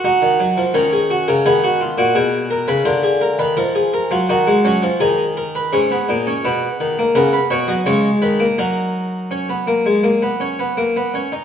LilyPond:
<<
  \new Staff \with { instrumentName = "Harpsichord" } { \time 4/4 \key ees \minor \tempo 4 = 84 ges'4 bes'16 aes'16 ges'16 bes'16 aes'16 ges'16 f'16 ges'16 aes'8 bes'16 ces''16 | bes'16 aes'16 bes'16 ces''16 bes'16 aes'16 bes'16 f'16 ges'4 aes'8 bes'16 ces''16 | \key fis \mixolydian gis'2 ais'16 b'16 cis''16 dis''16 cis''8 b'8 | ais'2.~ ais'8 r8 | }
  \new Staff \with { instrumentName = "Harpsichord" } { \clef bass \time 4/4 \key ees \minor << { ees'4 des'4 ces'2 | f'2 ees'8 des'8 ees'4 | \key fis \mixolydian cis'16 b16 dis'16 cis'16 b8. ais16 b8. fis16 gis8. ais16 | dis'4 cis'16 b16 ais16 gis16 ais16 b16 cis'16 b16 ais16 b16 cis'16 dis'16 | } \\ { r16 ees16 ges16 f16 ees8. des16 ees8. bes,16 ces8. des16 | d8. ees16 f8. ges16 ees16 aes16 ges16 f16 ees4 | gis,8 ais,8 b,8 dis8 cis8 b,8 cis8 dis8 | fis2.~ fis8 r8 | } >> }
>>